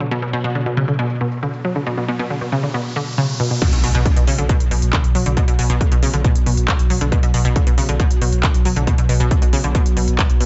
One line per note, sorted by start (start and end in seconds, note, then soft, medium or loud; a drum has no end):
0.00 3.61 B2 medium
0.00 0.06 D3 medium
0.00 3.61 F#3 medium
0.00 closed hi-hat medium
0.11 0.17 B2 loud
0.11 closed hi-hat medium
0.11 riser medium
0.22 0.28 B2 medium
0.22 closed hi-hat medium
0.33 0.39 B2 loud
0.44 0.50 B2 loud
0.44 closed hi-hat medium
0.55 0.61 D3 medium
0.55 closed hi-hat medium
0.66 0.72 B2 medium
0.66 closed hi-hat medium
0.77 0.86 C#3 loud
0.88 0.94 D3 medium
0.88 closed hi-hat medium
0.99 1.05 B2 loud
0.99 closed hi-hat medium
1.10 closed hi-hat medium
1.21 1.27 B2 medium
1.32 closed hi-hat medium
1.43 1.49 D3 medium
1.43 closed hi-hat medium
1.54 closed hi-hat medium
1.65 1.71 F#3 medium
1.76 1.81 D3 medium
1.76 closed hi-hat medium
1.87 1.92 B2 loud
1.87 closed hi-hat medium
1.98 2.03 B2 medium
1.98 closed hi-hat medium
2.08 2.14 B2 loud
2.19 2.25 B2 loud
2.19 closed hi-hat medium
2.30 2.36 D3 medium
2.30 closed hi-hat medium
2.41 2.47 B2 medium
2.41 closed hi-hat medium
2.52 2.61 C#3 loud
2.63 2.69 D3 medium
2.63 closed hi-hat medium
2.74 2.80 B2 loud
2.74 closed hi-hat medium
2.85 closed hi-hat medium
2.96 3.02 D3 loud
3.07 closed hi-hat medium
3.18 3.24 C#3 loud
3.18 closed hi-hat medium
3.29 closed hi-hat medium
3.40 3.49 B2 loud
3.51 3.57 B2 medium
3.51 closed hi-hat medium
3.62 3.68 B2 loud
3.62 10.46 B2 medium
3.62 10.46 F#3 medium
3.62 kick loud
3.62 closed hi-hat medium
3.62 crash loud
3.62 impact medium
3.73 3.83 B1 medium
3.73 3.79 B2 medium
3.73 closed hi-hat medium
3.84 3.94 B1 loud
3.84 3.90 B2 loud
3.84 open hi-hat loud
3.95 4.05 B1 medium
3.95 4.00 B2 loud
3.95 closed hi-hat medium
4.06 4.11 D3 medium
4.06 kick loud
4.06 closed hi-hat medium
4.16 4.27 B1 medium
4.16 4.22 B2 medium
4.16 closed hi-hat medium
4.27 4.36 C#3 loud
4.27 open hi-hat loud
4.38 4.49 B1 medium
4.38 4.44 D3 medium
4.38 closed hi-hat medium
4.49 4.55 B2 loud
4.49 kick loud
4.49 closed hi-hat medium
4.60 4.71 B1 medium
4.60 closed hi-hat medium
4.71 4.82 B1 loud
4.71 4.77 B2 medium
4.71 open hi-hat loud
4.82 4.93 B1 medium
4.82 closed hi-hat medium
4.93 4.99 D3 medium
4.93 kick loud
4.93 clap loud
4.93 closed hi-hat medium
5.04 5.15 B1 medium
5.04 closed hi-hat medium
5.15 5.21 F#3 medium
5.15 open hi-hat loud
5.26 5.37 B1 medium
5.26 5.32 D3 medium
5.26 closed hi-hat medium
5.37 5.43 B2 loud
5.37 kick loud
5.37 closed hi-hat medium
5.48 5.58 B1 medium
5.48 5.54 B2 medium
5.48 closed hi-hat medium
5.59 5.69 B1 medium
5.59 5.65 B2 loud
5.59 open hi-hat loud
5.70 5.80 B1 medium
5.70 5.76 B2 loud
5.70 closed hi-hat medium
5.81 5.87 D3 medium
5.81 kick loud
5.81 closed hi-hat medium
5.92 6.02 B1 medium
5.92 5.98 B2 medium
5.92 closed hi-hat medium
6.03 6.11 C#3 loud
6.03 open hi-hat loud
6.14 6.24 B1 medium
6.14 6.19 D3 medium
6.14 closed hi-hat medium
6.24 6.30 B2 loud
6.24 kick loud
6.24 closed hi-hat medium
6.35 6.46 B1 medium
6.35 closed hi-hat medium
6.46 6.57 B1 medium
6.46 6.52 B2 medium
6.46 open hi-hat loud
6.57 6.68 B1 medium
6.57 closed hi-hat medium
6.68 6.74 D3 medium
6.68 kick loud
6.68 clap loud
6.68 closed hi-hat medium
6.79 6.90 B1 medium
6.79 closed hi-hat medium
6.90 6.96 F#3 medium
6.90 open hi-hat loud
7.01 7.12 B1 medium
7.01 7.07 D3 medium
7.01 closed hi-hat medium
7.12 7.18 B2 loud
7.12 kick loud
7.12 closed hi-hat medium
7.23 7.33 B1 medium
7.23 7.29 B2 medium
7.23 closed hi-hat medium
7.34 7.44 B1 medium
7.34 7.40 B2 loud
7.34 open hi-hat loud
7.45 7.56 B1 medium
7.45 7.51 B2 loud
7.45 closed hi-hat medium
7.56 7.62 D3 medium
7.56 kick loud
7.56 closed hi-hat medium
7.67 7.78 B1 medium
7.67 7.73 B2 medium
7.67 closed hi-hat medium
7.78 7.87 C#3 loud
7.78 open hi-hat loud
7.89 7.99 B1 medium
7.89 7.95 D3 medium
7.89 closed hi-hat medium
8.00 8.06 B2 loud
8.00 kick loud
8.00 closed hi-hat medium
8.11 8.21 B1 medium
8.11 closed hi-hat medium
8.22 8.32 B1 loud
8.22 8.27 B2 medium
8.22 open hi-hat loud
8.32 8.43 B1 medium
8.32 closed hi-hat medium
8.43 8.49 D3 medium
8.43 kick loud
8.43 clap loud
8.43 closed hi-hat medium
8.54 8.65 B1 medium
8.54 closed hi-hat medium
8.65 8.71 F#3 medium
8.65 open hi-hat loud
8.76 8.87 B1 medium
8.76 8.82 D3 medium
8.76 closed hi-hat medium
8.87 8.93 B2 loud
8.87 kick loud
8.87 closed hi-hat medium
8.98 9.08 B1 medium
8.98 9.04 B2 medium
8.98 closed hi-hat medium
9.09 9.19 B1 loud
9.09 9.15 B2 loud
9.09 open hi-hat loud
9.20 9.31 B1 medium
9.20 9.26 B2 loud
9.20 closed hi-hat medium
9.31 9.37 D3 medium
9.31 kick loud
9.31 closed hi-hat medium
9.42 9.53 B1 medium
9.42 9.48 B2 medium
9.42 closed hi-hat medium
9.53 9.62 C#3 loud
9.53 open hi-hat loud
9.64 9.75 B1 medium
9.64 9.70 D3 medium
9.64 closed hi-hat medium
9.75 9.81 B2 loud
9.75 kick loud
9.75 closed hi-hat medium
9.86 9.96 B1 medium
9.86 closed hi-hat medium
9.97 10.07 B1 loud
9.97 10.00 B2 medium
9.97 open hi-hat loud
10.08 10.18 B1 medium
10.08 closed hi-hat medium
10.19 10.27 B2 medium
10.19 kick loud
10.19 clap loud
10.19 closed hi-hat medium
10.30 10.40 B1 medium
10.30 closed hi-hat medium
10.40 10.46 B2 medium
10.40 open hi-hat loud